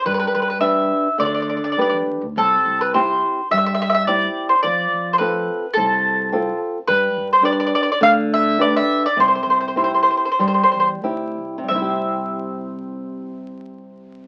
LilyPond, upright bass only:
\new Staff \with { instrumentName = "Upright bass" } { \clef bass \time 4/4 \key c \major \tempo 4 = 104 g,8 g,4. d,4 g,16 f,16 e,16 d,16 | c,8 c,4. g,2 | f,8 f,4. c,2 | g,8 g,4. d,2 |
c,8 c,4. g,8 e,8 d,8 c,8 | c,1 | }